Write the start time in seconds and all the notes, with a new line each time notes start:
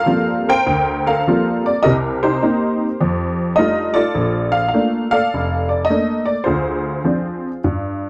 Already playing: A4 A#4 F5
0.06 F3 G3 A#3 C4 F4
0.49 A#4 C5 G5
0.67 D2
1.06 A4 A#4 F5
1.27 F3 G3 A#3 C4 F4
1.66 D5
1.83 C2 C3 G4 A#4 D#5
2.23 D#4 G4 C5
2.42 A#3 C4 D#4
3.01 F2
3.56 G3 A3 D4 D#4 F4 D#5
3.94 F4 A4 D5
4.15 A#1
4.52 F5
4.68 F5
4.73 A3 A#3 D4
5.11 A4 D5 F5
5.34 F1
5.69 D5
5.85 D#5
5.89 A3 A#3 D4
6.25 D5
6.44 D2 F4 G#4 C5
7.04 F3 C4 D4
7.64 G2